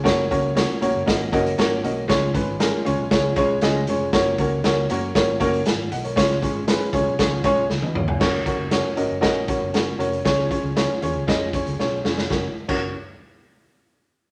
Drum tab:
CC |----------------|----------------|----------------|----------------|
HH |x-x-x-x-x-xxx-x-|x-x-x-x-x-x-x-x-|x-x-x-x-x-xxx-xx|x-x-x-x-x-x-----|
SD |o---o---o---o---|o---o---o---o---|o---o---o---o---|oo--o---o---o---|
T1 |----------------|----------------|----------------|-------------o--|
T2 |----------------|----------------|----------------|--------------o-|
FT |----------------|----------------|----------------|---------------o|
BD |o-o-----o-o-----|o-o-----o-o-----|o-o-----o-o-----|o-o---o-o-o-----|

CC |x---------------|----------------|---x------------|
HH |--x-x-x-x-x-x-xx|x-x-x-x-x-xx----|----------------|
SD |oo--o---o---o---|oo--o---o---o-oo|o---------------|
T1 |----------------|----------------|----------------|
T2 |----------------|----------------|----------------|
FT |----------------|----------------|----------------|
BD |o-o-----o-o-----|o-o-----o-o-----|o--o------------|